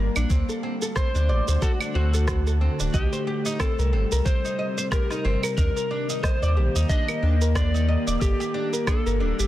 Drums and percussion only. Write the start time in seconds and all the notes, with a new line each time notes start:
0.16 claves, shaker
0.30 kick, shaker
0.49 shaker
0.82 shaker
0.96 kick, cross-stick, shaker
1.15 shaker
1.48 shaker
1.62 kick, shaker
1.81 claves, shaker
2.14 shaker
2.28 kick, cross-stick, shaker
2.47 shaker
2.80 shaker
2.94 kick, shaker
3.13 shaker
3.46 shaker
3.60 kick, cross-stick, claves, shaker
3.79 shaker
4.12 shaker
4.26 kick, shaker
4.45 shaker
4.78 shaker
4.92 kick, cross-stick, shaker
5.11 cross-stick, shaker
5.43 claves, shaker
5.58 kick, shaker
5.77 shaker
6.10 shaker
6.24 kick, cross-stick, shaker
6.43 shaker
6.76 shaker
6.90 kick, shaker
7.08 claves, shaker
7.42 shaker
7.55 kick, cross-stick, shaker
7.75 shaker
8.08 shaker
8.21 kick, shaker
8.41 shaker
8.74 shaker
8.87 kick, cross-stick, claves, shaker
9.07 shaker
9.40 shaker